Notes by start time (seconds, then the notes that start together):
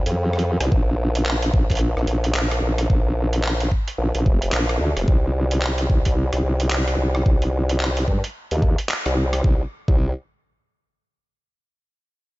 0.06 F2, closed hi-hat
0.33 cross-stick
0.39 closed hi-hat
0.60 C2, cross-stick, closed hi-hat
0.72 A#1, kick
1.15 closed hi-hat
1.26 clap
1.42 closed hi-hat
1.54 A#1, kick
1.70 A#1, kick, closed hi-hat
1.71 closed hi-hat
1.75 closed hi-hat
1.77 closed hi-hat
1.79 closed hi-hat
1.97 A#1, cross-stick
2.07 A#1, closed hi-hat
2.24 closed hi-hat
2.35 A#1, clap
2.51 cross-stick, closed hi-hat
2.62 A#1
2.78 cross-stick, closed hi-hat
2.90 A#1, kick
3.33 closed hi-hat
3.44 clap
3.60 closed hi-hat
3.72 kick
3.88 closed hi-hat
3.98 A#1
4.15 A#1, closed hi-hat
4.26 F1, kick
4.42 closed hi-hat
4.52 A#1, clap
4.69 cross-stick, closed hi-hat
4.80 D2
4.97 F1, cross-stick, closed hi-hat
5.08 C2, kick
5.51 closed hi-hat
5.62 clap
5.78 closed hi-hat
5.90 C2, kick
6.05 C2, kick, closed hi-hat
6.33 C2, cross-stick, closed hi-hat
6.44 C2
6.60 closed hi-hat
6.70 C2, clap
6.88 cross-stick, closed hi-hat
6.98 C2
7.15 cross-stick
7.26 C2, kick
7.42 closed hi-hat
7.69 closed hi-hat
7.80 clap
7.97 closed hi-hat
8.08 G2, kick
8.24 closed hi-hat
8.51 D#2, closed hi-hat
8.62 kick
8.78 closed hi-hat
8.89 clap
9.06 C2, cross-stick, closed hi-hat
9.33 cross-stick, closed hi-hat
9.44 C2, kick
9.88 C2, kick